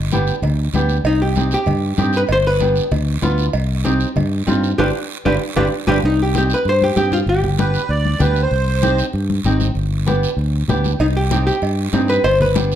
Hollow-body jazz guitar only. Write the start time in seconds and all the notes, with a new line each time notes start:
1.06 D#4
1.22 G4
1.54 G4
2.17 B4
2.32 C5
2.47 B4
4.78 G4 B4 D5
5.25 G4 B4 D5
5.56 G4 B4 D5
5.87 G4 B4 D5
6.05 D#4
6.22 G4
6.38 G4
6.54 B4
6.69 C5
6.84 G4
6.97 G4
7.13 F4
7.29 G4
11.01 D#4
11.17 G4
11.47 G4
12.09 B4
12.24 C5
12.42 B4